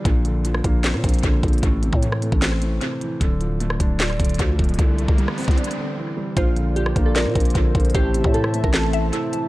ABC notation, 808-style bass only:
X:1
M:4/4
L:1/16
Q:1/4=152
K:Bblyd
V:1 name="808-style bass" clef=bass
B,,,6 B,,,3 B,, B,,,2 B,,,2 B,,,2 | A,,,3 A,,4 A,,,4- A,,, z4 | D,,,6 D,,,4 D,,,2 D,,2 D,,,2 | C,,3 C,,2 z2 C,, z8 |
B,,,6 B,,,3 B,, B,,,2 B,,,2 B,,,2 | A,,,3 A,,4 A,,,4- A,,, z4 |]